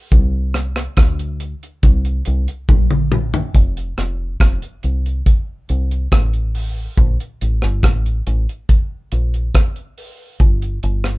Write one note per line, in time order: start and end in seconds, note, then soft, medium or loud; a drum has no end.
0.12 0.86 C2 loud
0.12 kick loud
0.12 closed hi-hat medium
0.54 cross-stick medium
0.54 closed hi-hat medium
0.76 cross-stick medium
0.76 closed hi-hat medium
0.97 1.54 D2 loud
0.97 kick loud
0.97 cross-stick loud
0.97 closed hi-hat medium
1.19 closed hi-hat medium
1.40 closed hi-hat medium
1.63 closed hi-hat soft
1.83 2.21 C2 loud
1.83 kick loud
1.83 closed hi-hat loud
2.05 closed hi-hat medium
2.25 2.46 C2 medium
2.25 closed hi-hat medium
2.48 closed hi-hat medium
2.69 3.43 A#1 loud
2.69 kick loud
2.69 high tom medium
2.91 mid tom medium
3.12 mid tom loud
3.34 floor tom loud
3.54 3.92 F1 medium
3.54 kick loud
3.54 closed hi-hat medium
3.77 closed hi-hat medium
3.98 4.35 F1 medium
3.98 cross-stick medium
3.98 closed hi-hat medium
4.40 4.59 F1 medium
4.40 kick loud
4.40 cross-stick loud
4.40 closed hi-hat medium
4.62 closed hi-hat soft
4.83 5.21 C2 medium
4.83 closed hi-hat medium
5.06 closed hi-hat medium
5.26 kick loud
5.26 closed hi-hat medium
5.69 6.06 C2 medium
5.69 closed hi-hat medium
5.91 closed hi-hat medium
6.12 6.86 A1 medium
6.12 kick loud
6.12 cross-stick loud
6.12 closed hi-hat medium
6.33 closed hi-hat soft
6.55 open hi-hat medium
6.97 7.17 A#1 loud
6.97 kick loud
6.97 closed hi-hat medium
7.20 closed hi-hat medium
7.41 7.60 A1 medium
7.41 closed hi-hat medium
7.62 7.81 G1 medium
7.62 cross-stick medium
7.83 8.20 A1 medium
7.83 kick loud
7.83 cross-stick loud
7.83 closed hi-hat medium
8.06 closed hi-hat medium
8.27 8.45 A1 medium
8.27 closed hi-hat medium
8.49 closed hi-hat soft
8.69 kick loud
8.69 closed hi-hat loud
9.12 9.49 A#1 medium
9.12 closed hi-hat medium
9.34 closed hi-hat soft
9.55 kick loud
9.55 cross-stick loud
9.55 closed hi-hat loud
9.76 closed hi-hat soft
9.98 open hi-hat medium
10.40 10.77 G1 medium
10.40 kick loud
10.40 closed hi-hat medium
10.62 closed hi-hat medium
10.83 11.18 G1 medium
10.83 closed hi-hat medium
11.04 cross-stick medium